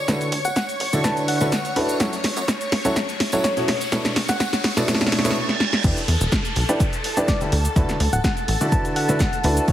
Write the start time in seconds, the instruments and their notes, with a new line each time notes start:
Already playing: string machine C#5 C#6, riser
0.08 analog synth bass D2, upright piano D3 D4 E4 F#4 A4 B4, kick, snare, closed hi-hat, tambourine, shaker
0.21 closed hi-hat, tambourine, shaker
0.32 analog synth bass D2, closed hi-hat, open hi-hat
0.45 analog synth bass D1, soft synth lead F#5, closed hi-hat, tambourine, shaker
0.56 soft synth lead F#5, kick, snare, closed hi-hat, tambourine, shaker
0.69 closed hi-hat, tambourine, shaker
0.80 analog synth bass A1, open hi-hat
0.93 upright piano D3 D4 E4 F#4 A4 D5, closed hi-hat, tambourine, shaker
1.04 upright piano D3 D4 E4 F#4 A4 B4, soft synth lead A5, kick, snare, closed hi-hat, tambourine, shaker
1.17 closed hi-hat, tambourine, shaker
1.28 soft synth lead F#5, closed hi-hat, open hi-hat
1.40 upright piano D3 D4 E4 F#4 A4 B4, snare, closed hi-hat, tambourine, shaker
1.52 kick, snare, closed hi-hat, tambourine, shaker
1.65 closed hi-hat, tambourine, shaker
1.76 analog synth bass D2, upright piano D4 E4 F#4 A4 B4, closed hi-hat, open hi-hat
1.89 closed hi-hat, tambourine, shaker
2.00 analog synth bass F#1, upright piano F#3 C#4 E4 F#4 A4 C#5, kick, snare, closed hi-hat, tambourine, shaker
2.13 snare, closed hi-hat, tambourine, shaker
2.24 analog synth bass F#1, snare, closed hi-hat, open hi-hat
2.36 analog synth bass F#2, closed hi-hat, tambourine, shaker
2.48 kick, snare, closed hi-hat, shaker
2.61 closed hi-hat, tambourine, shaker
2.72 analog synth bass C#2, snare, closed hi-hat, open hi-hat
2.85 upright piano F#3 C#4 E4 F#4 A4 C#5, closed hi-hat, tambourine, shaker
2.96 kick, snare, closed hi-hat, tambourine, shaker
3.09 closed hi-hat, tambourine, shaker
3.20 snare, closed hi-hat, open hi-hat
3.32 upright piano F#3 C#4 E4 F#4 A4 C#5, closed hi-hat, tambourine, shaker
3.43 soft synth lead C#5, kick, snare, closed hi-hat, tambourine, shaker
3.57 upright piano B2 C#4 E4 F#4 A4 C#5, snare, closed hi-hat, tambourine, shaker
3.68 analog synth bass B1, snare, closed hi-hat, open hi-hat
3.81 closed hi-hat, tambourine, shaker
3.92 analog synth bass B1, upright piano B2 D4 E4 A4 B4 C#5, kick, snare, closed hi-hat, tambourine, shaker
4.05 snare, closed hi-hat, tambourine, shaker
4.16 analog synth bass B1, snare, closed hi-hat, open hi-hat
4.28 analog synth bass F#1, soft synth lead F#5, snare, closed hi-hat, tambourine, shaker
4.40 soft synth lead F#5, kick, snare, closed hi-hat, tambourine, shaker
4.53 snare, closed hi-hat, tambourine, shaker
4.64 analog synth bass F#1, snare, open hi-hat
4.77 upright piano B2 D4 E4 A4 B4 D5, snare, closed hi-hat, tambourine, shaker
4.88 upright piano B2 D4 E4 A4 B4 C#5, kick, snare, closed hi-hat, tambourine, reverse cymbal, shaker
4.95 snare
5.01 snare, closed hi-hat, tambourine, shaker
5.07 snare
5.12 snare, closed hi-hat, open hi-hat
5.19 snare
5.24 upright piano B2 D4 E4 A4 B4 C#5, snare, closed hi-hat, tambourine, shaker
5.31 snare
5.49 snare
5.60 snare
5.73 snare
5.84 analog synth bass E2, upright piano E3 D4 E4 G4 B4 D5, string machine A4 A5, kick, closed hi-hat, crash, downlifter, shaker
5.97 snare, closed hi-hat, shaker
6.08 analog synth bass E2, closed hi-hat, open hi-hat
6.21 analog synth bass E1, closed hi-hat, shaker
6.32 kick, snare, closed hi-hat, shaker
6.45 closed hi-hat, shaker
6.56 analog synth bass B1, closed hi-hat, open hi-hat
6.69 upright piano E3 D4 E4 G4 B4 D5, closed hi-hat, shaker
6.80 kick, closed hi-hat, shaker
6.93 closed hi-hat, shaker
7.04 closed hi-hat, open hi-hat
7.17 upright piano E3 D4 E4 G4 B4 D5, closed hi-hat, shaker
7.28 soft synth lead D5, kick, snare, closed hi-hat, shaker
7.41 upright piano D3 D4 E4 G4 B4 D5, snare, closed hi-hat, shaker
7.52 analog synth bass D2, closed hi-hat, open hi-hat
7.65 closed hi-hat, shaker
7.76 analog synth bass D2, upright piano D3 D4 E4 F#4 A4 B4, kick, closed hi-hat, shaker
7.89 snare, closed hi-hat, shaker
8.00 analog synth bass D2, closed hi-hat, open hi-hat
8.13 analog synth bass D1, soft synth lead F#5, closed hi-hat, shaker
8.24 soft synth lead F#5, kick, snare, closed hi-hat, shaker
8.37 closed hi-hat, shaker
8.48 analog synth bass A1, open hi-hat
8.61 upright piano D3 D4 E4 F#4 A4 D5, closed hi-hat, shaker
8.72 upright piano D3 D4 E4 F#4 A4 B4, soft synth lead A5, kick, closed hi-hat, shaker
8.85 closed hi-hat, shaker
8.96 soft synth lead F#5, closed hi-hat, open hi-hat
9.08 upright piano D3 D4 E4 F#4 A4 B4, snare, closed hi-hat, shaker
9.19 kick, snare, closed hi-hat, shaker
9.33 closed hi-hat, shaker
9.43 analog synth bass D2, upright piano D4 E4 F#4 A4 B4, closed hi-hat, open hi-hat
9.57 closed hi-hat, shaker
9.68 analog synth bass F#1, upright piano F#3 C#4 E4 F#4 A4 C#5, kick, closed hi-hat, shaker